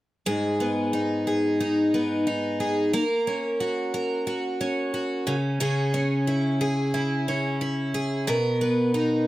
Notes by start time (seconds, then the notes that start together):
0.26 G#2 G#4
0.60 B3
0.93 D#4
1.27 G#4
1.60 D#4
1.94 B3
2.27 D#4
2.60 G#4
2.93 A#3 A#4
3.27 C#4
3.60 F#4
3.94 A#4
4.27 F#4
4.61 C#4
4.94 F#4
5.27 C#3
5.60 C#3 G#4
5.94 C#4
6.27 E4
6.61 G#4
6.94 E4
7.28 C#4
7.61 E4
7.94 G#4
8.27 B2 A#4
8.61 B3
8.94 D#4